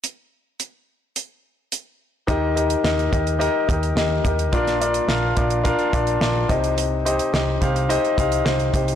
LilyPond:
<<
  \new Staff \with { instrumentName = "Grand piano" } { \time 4/4 \key ees \major \tempo 4 = 107 r1 | <ees' g' bes' ees''>8 <ees' g' bes' ees''>8 <ees' g' bes' ees''>8 <ees' g' bes' ees''>8 <ees' g' bes' ees''>8 <ees' g' bes' ees''>8 <ees' g' bes' ees''>8 <ees' g' bes' ees''>8 | <d' f' bes' d''>8 <d' f' bes' d''>8 <d' f' bes' f''>8 <d' f' bes' d''>8 <d' f' bes' f''>8 <d' f' bes' d''>8 <d' f' bes' d''>8 <ees' g' c'' ees''>8~ | <ees' g' c'' ees''>8 <ees' g' c'' ees''>8 <ees' g' c'' ees''>8 <ees' g' c'' f''>8 <ees' g' c'' ees''>8 <ees' g' c'' f''>8 <ees' g' c'' ees''>8 <ees' g' c'' ees''>8 | }
  \new Staff \with { instrumentName = "Grand piano" } { \clef bass \time 4/4 \key ees \major r1 | ees4. r2 r8 | bes,4. r2 c8~ | c4 r2. | }
  \new Staff \with { instrumentName = "Picked electric bass" } { \clef bass \time 4/4 \key ees \major r1 | ees,4 ees,8 ees,8. r16 ees,8 ees,8 ees,8 | bes,,4 bes,,8 bes,,8. r16 bes,,8 bes,,8 c,8~ | c,4 c,8 c,8. r16 c,8 c,8 c,8 | }
  \new DrumStaff \with { instrumentName = "Drums" } \drummode { \time 4/4 hh4 hh4 hh4 hh4 | <hh bd>8 hh16 hh16 sn16 hh16 <hh bd>16 hh16 hh8 <hh bd>16 hh16 sn8 <hh bd>16 hh16 | <hh bd>16 <hh sn>16 hh16 hh16 sn8 <hh bd>16 hh16 <hh bd>16 hh16 <hh bd>16 hh16 sn8 <hh bd>16 hh16 | hh8 hh16 hh16 sn8 <hh bd>16 hh16 hh16 hh16 <hh bd>16 hh16 sn16 hh16 <hh bd>16 hh16 | }
>>